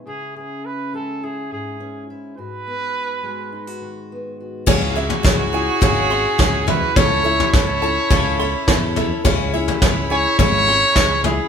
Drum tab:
CC |----------------|----------------|x---------------|----------------|
SD |----------------|----------------|----o-------o---|----o-------o---|
FT |----------------|----------------|o--o----o-----o-|o--o----o-----o-|
BD |----------------|----------------|o---o---o---o---|o---o---o---o---|

CC |----------------|
SD |----o-------o---|
FT |o--o----o-----o-|
BD |o---o---o---o---|